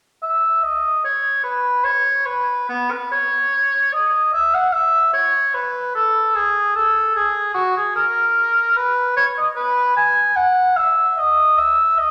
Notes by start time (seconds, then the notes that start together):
0.22 E5
0.63 D#5
1.04 C#5
1.43 B4
1.84 C#5
2.26 B4
2.69 B3
2.91 B4
3.12 C#5
3.93 D#5
4.33 E5
4.54 F#5
4.73 E5
5.13 C#5
5.54 B4
5.95 A4
6.35 G#4
6.75 A4
7.16 G#4
7.54 F#4
7.77 G#4
7.96 A#4
8.77 B4
9.17 C#5
9.38 D#5
9.56 B4
9.96 G#5
10.36 F#5
10.77 E5
11.18 D#5
11.58 E5
11.98 D#5